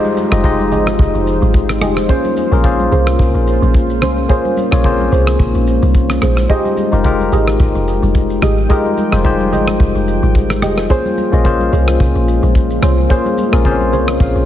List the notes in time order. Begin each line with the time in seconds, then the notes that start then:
Already playing: F3 G#3 D#4 F4 G4 G#4 C5 D5 D#5, downlifter
0.04 high conga, shaker
0.16 high conga, shaker
0.31 F1 G#3 D#4 F4 G4 D#5, cross-stick, high conga, shaker
0.43 G#3 D#4 F4 G4 D#5, kick, low conga, shaker
0.59 high conga, shaker
0.71 G#1 G4 G#4 D#5, low conga, shaker
0.87 cross-stick
0.99 F1, kick, low conga, shaker
1.14 F1, shaker
1.27 shaker
1.42 G#1, high conga, shaker
1.54 kick, shaker
1.69 cross-stick, shaker
1.81 F1 G4 G#4 D#5, cross-stick, high conga, low conga, shaker
1.97 cross-stick, shaker
2.08 G#3 A#3 C#4 F4 G#4 C5, kick, shaker
2.24 high conga, shaker
2.37 high conga, shaker
2.51 A#1 A#3 C#4 F4 G#4 A#4, high conga, shaker
2.63 A#3 C#4 F4 G#4 C5, kick, low conga, shaker
2.79 high conga, shaker
2.92 C2 C#4 G#4 C5, low conga, shaker
3.07 cross-stick
3.19 C2, kick, low conga, shaker
3.35 A#1, shaker
3.47 shaker
3.62 A#1, high conga, shaker
3.74 kick, shaker
3.90 shaker
4.01 C2 C#4 G#4 C5, cross-stick, high conga, low conga, shaker
4.17 shaker
4.29 A#3 C#4 D#4 F4 G#4 C5, kick, shaker
4.45 high conga, shaker
4.57 high conga, shaker
4.71 A#1 A#3 C#4 F4 G#4 C#5, cross-stick, high conga, shaker
4.84 A#3 C4 F4 G#4 C5, kick, low conga, shaker
4.91 C#4
4.99 high conga, shaker
5.12 C2 C#4 G#4 C5, low conga, shaker
5.27 cross-stick
5.39 A#1, kick, low conga, shaker
5.55 A#1, shaker
5.67 shaker
5.82 C2, high conga, shaker
5.95 kick, shaker
6.09 cross-stick, shaker
6.21 A#1 C#4 G#4 C5, cross-stick, high conga, low conga, shaker
6.37 cross-stick, shaker
6.49 F3 G#3 D#4 F4 G4 G#4 C5 D#5 G5, kick, shaker
6.65 high conga, shaker
6.77 high conga, shaker
6.92 F1 G#3 D#4 F4 G4 A#4, high conga, shaker
7.04 G#3 D#4 F4 G4 A#4, kick, low conga, shaker
7.19 high conga, shaker
7.32 G#1 G4 G#4 D#5, low conga, shaker
7.48 cross-stick
7.60 G#1, kick, low conga, shaker
7.75 F1, shaker
7.88 shaker
8.03 F1, high conga, shaker
8.15 kick, shaker
8.30 shaker
8.42 G#1 G4 G#4 D#5, cross-stick, high conga, low conga, shaker
8.57 shaker
8.69 G#3 D#4 F4 G4 G#4 A#4 D#5, kick, shaker
8.85 high conga, shaker
8.97 high conga, shaker
9.12 F1 G#3 D#4 F4 G4 C5, cross-stick, high conga, shaker
9.24 G3 D#4 F4 G4 C5, kick, low conga, shaker
9.31 G#3
9.40 high conga, shaker
9.52 G#1 G4 G#4 D#5, low conga, shaker
9.68 cross-stick
9.80 F1, kick, low conga, shaker
9.95 F1, shaker
10.08 shaker
10.23 G#1, high conga, shaker
10.35 kick, shaker
10.50 cross-stick, shaker
10.62 F1 G4 G#4 D#5, cross-stick, high conga, low conga, shaker
10.78 cross-stick, shaker
10.89 C#3 G#3 A#3 C#4 F4 G#4 C5, kick, shaker
11.05 high conga, shaker
11.17 high conga, shaker
11.32 A#1 A#3 C#4 F4 G#4 D#5, high conga, shaker
11.44 A#3 C#4 F4 G#4 C5, kick, low conga, shaker
11.60 high conga, shaker
11.72 C2 C#4 G#4 C5, low conga, shaker
11.88 cross-stick
12.00 C2, kick, low conga, shaker
12.15 A#1, shaker
12.28 shaker
12.43 A#1, high conga, shaker
12.55 kick, shaker
12.70 shaker
12.82 C2 C#4 G#4 C5, cross-stick, high conga, low conga, shaker
12.98 shaker
13.09 A#3 C#4 F4 G#4 C5, kick, shaker
13.26 high conga, shaker
13.37 high conga, shaker
13.52 A#1 A#3 C#4 F4 G#4 A#4, cross-stick, high conga, shaker
13.64 A#3 C4 F4 G#4 C5, kick, low conga, shaker
13.71 C#4
13.80 high conga, shaker
13.92 C2 C#4 G#4 C5 C#5, low conga, shaker
14.08 cross-stick, shaker
14.20 A#1 F5, kick, low conga, shaker
14.35 A#1, shaker